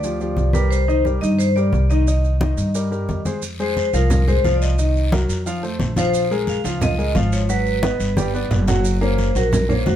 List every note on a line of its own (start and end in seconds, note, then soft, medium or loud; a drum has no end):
0.00 0.34 D2 medium
0.00 0.17 F3 medium
0.00 0.18 F4 medium
0.00 0.18 G4 medium
0.00 0.50 D5 medium
0.00 high conga soft
0.00 maracas medium
0.20 0.48 F3 medium
0.20 0.48 F4 medium
0.20 0.49 G4 medium
0.20 high conga soft
0.20 maracas soft
0.36 1.16 C2 medium
0.36 high conga medium
0.36 maracas soft
0.53 0.82 G3 medium
0.53 0.82 G4 medium
0.53 0.82 A#4 medium
0.53 0.61 B4 medium
0.53 high conga medium
0.53 maracas medium
0.70 1.02 C5 loud
0.70 high conga soft
0.70 maracas medium
0.88 1.02 D#3 medium
0.88 1.02 D#4 medium
0.88 1.02 D#5 medium
0.88 high conga soft
0.88 maracas soft
1.04 1.19 G3 medium
1.04 1.19 G4 medium
1.04 1.19 A#4 medium
1.04 high conga medium
1.04 maracas soft
1.21 1.69 G2 medium
1.21 1.50 D#3 medium
1.21 1.50 D#4 medium
1.21 1.29 D#5 medium
1.21 1.50 D#5 medium
1.21 maracas medium
1.38 1.55 C5 loud
1.38 high conga soft
1.38 maracas medium
1.56 1.84 G3 medium
1.56 1.84 G4 medium
1.56 1.84 A#4 medium
1.56 1.88 D5 medium
1.56 high conga soft
1.56 maracas soft
1.73 2.52 C2 loud
1.73 high conga medium
1.73 maracas soft
1.90 2.04 D#3 medium
1.90 2.04 D#4 medium
1.90 3.22 D#5 medium
1.90 2.04 D#5 medium
1.90 maracas medium
2.07 2.35 D#3 medium
2.07 2.35 D#4 medium
2.07 2.35 D#5 medium
2.07 high conga soft
2.07 maracas medium
2.24 high conga soft
2.24 maracas soft
2.41 2.69 D#3 medium
2.41 2.69 D#4 medium
2.41 2.69 D#5 medium
2.41 high conga medium
2.41 maracas soft
2.57 3.05 G2 medium
2.57 high conga soft
2.57 maracas medium
2.74 2.89 G3 medium
2.74 2.89 G4 medium
2.74 2.89 A#4 medium
2.74 high conga soft
2.74 maracas medium
2.91 3.19 G3 medium
2.91 3.19 G4 medium
2.91 3.20 A#4 medium
2.91 high conga soft
2.91 maracas soft
3.09 3.88 F2 medium
3.09 high conga medium
3.09 maracas soft
3.25 3.40 G#3 medium
3.25 3.40 G#4 medium
3.25 3.40 C5 medium
3.25 high conga medium
3.25 maracas medium
3.42 high conga soft
3.42 long guiro medium
3.42 maracas medium
3.59 3.87 G#3 medium
3.59 3.88 G#4 medium
3.59 3.88 C5 medium
3.59 3.93 C5 medium
3.59 high conga soft
3.59 maracas soft
3.77 high conga medium
3.77 short guiro medium
3.77 maracas soft
3.93 4.41 C2 loud
3.93 4.21 F3 medium
3.93 4.22 F4 medium
3.93 4.29 A#4 medium
3.93 4.22 F5 medium
3.93 short guiro medium
3.93 maracas medium
4.10 high conga soft
4.10 low conga medium
4.10 long guiro medium
4.10 maracas medium
4.27 4.41 G#3 medium
4.27 4.42 G#4 medium
4.27 4.42 C5 medium
4.27 4.53 C5 medium
4.27 high conga soft
4.27 low conga medium
4.27 maracas soft
4.44 5.23 C2 medium
4.44 4.72 F3 medium
4.44 4.72 F4 medium
4.44 4.72 F5 medium
4.44 high conga medium
4.44 short guiro medium
4.44 maracas soft
4.55 4.62 D5 medium
4.62 5.09 D#5 medium
4.62 short guiro medium
4.62 maracas medium
4.78 5.06 D#3 medium
4.78 5.06 D#4 medium
4.78 5.07 D#5 medium
4.78 high conga soft
4.78 long guiro medium
4.78 maracas medium
4.95 high conga soft
4.95 maracas soft
5.12 5.40 F#3 medium
5.12 5.40 F#4 medium
5.12 5.40 A#4 medium
5.12 high conga loud
5.12 short guiro medium
5.12 maracas soft
5.28 5.76 F2 medium
5.28 high conga soft
5.28 short guiro medium
5.28 maracas medium
5.46 5.60 F3 medium
5.46 5.60 F4 medium
5.46 5.60 F5 medium
5.46 high conga soft
5.46 long guiro medium
5.46 maracas medium
5.63 5.91 A3 medium
5.63 5.91 A4 medium
5.63 5.91 C5 medium
5.63 high conga soft
5.63 maracas soft
5.79 6.59 A#1 medium
5.79 high conga medium
5.79 short guiro medium
5.79 maracas soft
5.96 6.25 F3 medium
5.96 6.25 F4 medium
5.96 6.29 C5 medium
5.96 6.25 F5 medium
5.96 high conga medium
5.96 short guiro medium
5.96 maracas medium
6.13 high conga soft
6.13 long guiro medium
6.13 maracas medium
6.30 6.59 G#3 medium
6.30 6.59 G#4 medium
6.30 6.59 A#4 medium
6.30 high conga soft
6.30 maracas soft
6.47 6.83 F5 loud
6.47 high conga medium
6.47 short guiro medium
6.47 maracas soft
6.64 7.12 C#2 loud
6.64 6.93 F3 medium
6.64 6.93 F4 medium
6.64 6.93 F5 medium
6.64 short guiro medium
6.64 maracas medium
6.81 7.14 D#5 loud
6.81 high conga soft
6.81 low conga medium
6.81 long guiro medium
6.81 maracas medium
6.98 7.12 G#3 medium
6.98 7.12 G#4 medium
6.98 7.12 A#4 medium
6.98 high conga soft
6.98 maracas soft
7.15 7.94 G#1 loud
7.15 7.43 F3 medium
7.15 7.43 F4 medium
7.15 7.43 F5 medium
7.15 high conga medium
7.15 short guiro medium
7.15 maracas soft
7.32 7.40 C#5 medium
7.32 short guiro medium
7.32 maracas medium
7.49 7.77 F#3 medium
7.49 7.77 F#4 medium
7.49 8.64 B4 medium
7.49 7.77 F#5 medium
7.49 high conga soft
7.49 long guiro medium
7.49 maracas medium
7.66 high conga soft
7.66 maracas soft
7.83 8.11 B3 medium
7.83 8.11 B4 medium
7.83 8.11 D#5 medium
7.83 high conga medium
7.83 short guiro medium
7.83 maracas soft
7.99 8.47 G1 medium
7.99 high conga soft
7.99 short guiro medium
7.99 maracas medium
8.17 8.31 G3 medium
8.17 8.31 G4 medium
8.17 8.31 G5 medium
8.17 high conga loud
8.17 long guiro medium
8.17 maracas medium
8.34 8.62 B3 medium
8.34 8.62 B4 medium
8.34 8.62 D5 medium
8.34 maracas soft
8.51 9.30 F#1 loud
8.51 low conga medium
8.51 short guiro medium
8.51 maracas soft
8.68 8.95 F#3 medium
8.68 8.96 F#4 medium
8.68 8.96 F#5 medium
8.68 low conga medium
8.68 short guiro medium
8.68 maracas medium
8.84 high conga soft
8.84 long guiro medium
8.84 maracas medium
9.01 9.29 A#3 medium
9.01 9.30 C#4 medium
9.01 9.29 A#4 medium
9.01 9.37 C5 medium
9.01 high conga soft
9.01 maracas soft
9.18 high conga medium
9.18 short guiro medium
9.18 maracas soft
9.35 9.82 A#1 medium
9.35 9.63 F#3 medium
9.35 9.63 F#4 medium
9.35 9.71 A#4 medium
9.35 9.64 F#5 medium
9.35 short guiro medium
9.35 maracas medium
9.52 high conga soft
9.52 low conga medium
9.52 long guiro medium
9.52 maracas medium
9.69 9.83 A#3 medium
9.69 9.83 A#4 medium
9.69 9.96 C5 medium
9.69 9.83 C#5 medium
9.69 high conga soft
9.69 low conga medium
9.69 maracas soft
9.86 9.96 F1 medium
9.86 9.96 F#3 medium
9.86 9.96 F#4 medium
9.86 9.96 F#5 medium
9.86 high conga medium
9.86 short guiro medium
9.86 maracas soft